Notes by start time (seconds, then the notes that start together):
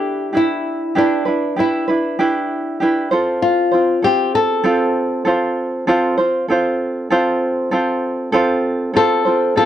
Already playing: D4 E4 G4 B4
0.33 D4 E4 G4 B4
0.37 E4
0.95 D4 E4 G4 B4
1.25 D4 E4 B4
1.56 D4 E4 G4 B4
1.88 D4 E4 B4
2.19 D4 E4 G4 B4
2.80 D4 E4 G4 B4
3.11 C4 F4 A4 C5
3.42 F4
3.71 C4 F4 C5
4.02 C4 F4 G4 A4 C5
4.35 A4
4.64 C4 F4 A4 C5
5.25 C4 F4 A4 C5
5.87 C4 F4 A4 C5
6.17 C4 F4 C5
6.48 C4 F4 A4 C5
7.10 C4 F4 A4 C5
7.71 C4 F4 A4 C5
8.32 C4 F4 A4 C5
8.94 C4 F4 A4 C5
9.25 C4 F4 C5
9.56 C4 F4 A4 C5